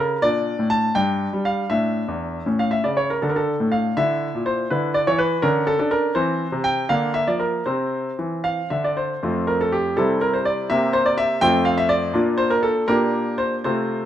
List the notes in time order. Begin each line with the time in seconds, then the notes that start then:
Already playing: C#3 C#4 A#4
0.22 A#2 D4 D5
0.59 A2
0.70 A5
0.95 G2 D4 G5
1.33 G3
1.45 F5
1.70 A2 D4 E5
2.08 E2
2.46 A2 C#4
2.59 F5
2.71 E5
2.84 C#3 D5
2.97 C#5
3.10 A#4
3.22 D3 D4 A4
3.29 A#4
3.36 A4
3.60 A2
3.72 F5
3.97 D3 E4 E5
4.35 A#2
4.46 C5
4.70 D3 E4 B4
4.94 D5
5.07 E3 C#5
5.18 B4
5.42 D3 C#4 A#4
5.67 A4
5.79 D4 A4
5.91 A#4
6.15 E3 C4 C5
6.52 C3
6.64 G5
6.89 D3 A#3 F5
7.14 E5
7.27 F3 D5
7.40 A#4
7.66 C3 C4 C5
8.19 E3
8.44 F5
8.70 D3 E5
8.84 D5
8.97 C5
9.23 F2 A3 C4 F4
9.47 A#4
9.61 A4
9.72 G4
9.97 C3 G3 C4 E4 A4
10.21 A#4
10.34 C5
10.45 D5
10.70 C3 A#3 C4 G4 E5
10.93 C5
11.06 D5
11.18 E5
11.41 F2 A3 C4 F4 G5
11.65 F5
11.78 E5
11.89 D5
12.14 A#2 A#3 D4 F4
12.38 C5
12.50 A#4
12.63 A4
12.88 A#2 A#3 D4 G4 A#4
13.38 C5
13.64 C3 A3 C4 F4 C5